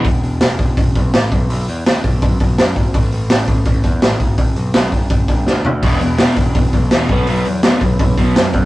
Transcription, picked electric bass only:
\new Staff \with { instrumentName = "Picked electric bass" } { \clef bass \time 4/4 \key b \mixolydian \tempo 4 = 166 e,,8 e,,8 e,,8 e,,8 e,,8 b,,8 a,,8 b,,8 | b,,8 e,8 dis,8 b,,8 b,,8 b,,8 fis,8 gis,,8 | a,,8 a,,8 a,,8 a,,8 a,,8 e,8 a,,8 gis,,8 | g,,8 b,,8 b,,8 g,,8 g,,8 g,,8 d,8 d,8 |
e,,8 e,,8 e,,8 e,,8 e,,8 b,,8 e,,8 b,,8 | b,,8 e,8 dis,8 b,,8 b,,8 b,,8 fis,8 fis,8 | }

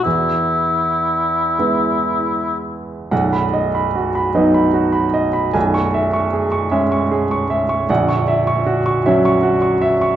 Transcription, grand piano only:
<<
  \new Staff \with { instrumentName = "Grand piano" } { \time 6/8 \key e \major \tempo 4. = 51 r2. | \key b \major fis''16 b''16 dis''16 b''16 fis'16 b''16 dis''16 b''16 fis'16 b''16 dis''16 b''16 | gis''16 cis'''16 e''16 cis'''16 gis'16 cis'''16 e''16 cis'''16 gis'16 cis'''16 e''16 cis'''16 | fis''16 cis'''16 e''16 cis'''16 fis'16 cis'''16 e''16 cis'''16 fis'16 cis'''16 e''16 cis'''16 | }
  \new Staff \with { instrumentName = "Grand piano" } { \clef bass \time 6/8 \key e \major e,4. <gis b e'>4. | \key b \major <b,,, b,,>4. <fis b dis'>4. | <b,,, b,,>4. <gis cis'>4. | <ais,,, ais,,>4. <fis cis'>4. | }
>>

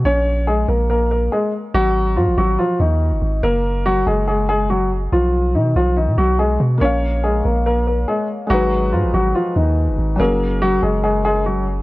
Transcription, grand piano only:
\new Staff \with { instrumentName = "Grand piano" } { \time 4/4 \key bes \phrygian \tempo 4 = 142 <des' des''>4 <aes aes'>8 <bes bes'>8 <bes bes'>8 <bes bes'>8 <aes aes'>8 r8 | <ges ges'>4 <f f'>8 <ges ges'>8 <f f'>8 <ees ees'>4. | <bes bes'>4 <ges ges'>8 <aes aes'>8 <aes aes'>8 <aes aes'>8 <ges ges'>8 r8 | <f f'>4 <dis dis'>8 <f f'>8 <dis dis'>8 <fis fis'>8 <gis gis'>8 r8 |
<des' des''>4 <aes aes'>8 <bes bes'>8 <bes bes'>8 <bes bes'>8 <aes aes'>8 r8 | <ges ges'>4 <f f'>8 <ges ges'>8 <f f'>8 <ees ees'>4. | <bes bes'>4 <ges ges'>8 <aes aes'>8 <aes aes'>8 <aes aes'>8 <ges ges'>8 r8 | }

